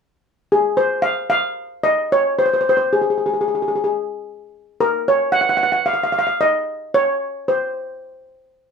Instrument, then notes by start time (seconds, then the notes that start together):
steel pan
0.52 G#4
0.77 C5
1.02 F5
1.30 F5
1.83 D#5
2.12 C#5
2.39 C5
2.46 C5
2.54 C5
2.61 C5
2.69 C5
2.77 C5
2.93 G#4
3.02 G#4
3.10 G#4
3.18 G#4
3.26 G#4
3.34 G#4
3.41 G#4
3.48 G#4
3.55 G#4
3.62 G#4
3.68 G#4
3.76 G#4
3.84 G#4
4.80 A#4
5.08 C#5
5.32 F#5
5.41 F#5
5.49 F#5
5.57 F#5
5.63 F#5
5.72 F#5
5.86 F5
5.93 F5
6.04 F5
6.12 F5
6.19 F5
6.27 F5
6.41 D#5
6.94 C#5
7.48 C5